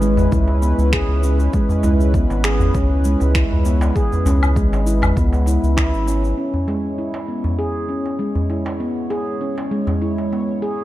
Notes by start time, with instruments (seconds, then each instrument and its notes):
Already playing: analog synth bass G#1, analog synth pad G#3 C#4 E4 B4
0.02 handpan G#3, shaker
0.17 darbuka tek, darbuka dum, shaker
0.32 analog synth bass C#2, handpan E4, kick, shaker
0.48 darbuka ka
0.62 handpan B3, darbuka ka, shaker
0.78 analog synth bass C#2, shaker
0.93 handpan G#4, finger snap, kick, shaker
1.08 analog synth bass C#2
1.23 handpan C#4, darbuka ka, shaker
1.39 darbuka ka, shaker
1.53 handpan G#3, kick, shaker
1.69 darbuka dum, shaker
1.83 analog synth bass C#2, handpan E4, darbuka ka, shaker
2.00 shaker
2.14 handpan B3, kick, shaker
2.30 analog synth bass G#1, darbuka tek, shaker
2.44 handpan G#4, finger snap, shaker
2.60 darbuka dum, shaker
2.74 analog synth bass C#2, handpan C#4, kick, shaker
3.05 handpan G#3, shaker
3.20 analog synth bass C#2, darbuka ka, shaker
3.35 handpan E4, finger snap, kick, shaker
3.51 analog synth bass C#2, darbuka dum
3.65 handpan B3, darbuka ka, shaker
3.81 darbuka ka, darbuka tek, shaker
3.96 handpan G#4, kick, shaker
4.12 darbuka dum, shaker
4.26 analog synth bass C#2, handpan C#4, darbuka ka, darbuka tek, shaker
4.43 low woodblock, shaker
4.56 handpan G#3, kick, shaker
4.72 analog synth bass G#1, darbuka tek, shaker
4.86 handpan E4, shaker
5.02 darbuka tek, darbuka dum, low woodblock, shaker
5.16 analog synth bass C#2, handpan B3, kick, shaker
5.33 darbuka ka, shaker
5.46 handpan E4, darbuka ka, shaker
5.63 analog synth bass C#2, shaker
5.77 handpan E4, finger snap, kick, darbuka tek, shaker
5.94 analog synth bass G#1, shaker
6.07 handpan C#4, darbuka ka, shaker
6.23 darbuka ka, shaker
6.38 analog synth pad G#3 C#4 E4 C#5, handpan C#4
6.54 darbuka dum
6.68 handpan G#3, darbuka ka
6.98 handpan E4
7.14 darbuka tek
7.28 handpan B3
7.44 darbuka dum
7.59 handpan G#4
7.89 handpan C#4
8.06 darbuka ka
8.19 handpan G#3
8.35 darbuka dum
8.50 handpan E4, darbuka ka
8.65 darbuka ka, darbuka tek
8.80 handpan B3
9.10 handpan G#4, darbuka ka
9.41 handpan C#4
9.58 darbuka tek
9.71 handpan G#3
9.87 darbuka tek, darbuka dum
10.02 handpan E4
10.18 darbuka ka
10.32 handpan B3, darbuka ka
10.62 handpan G#4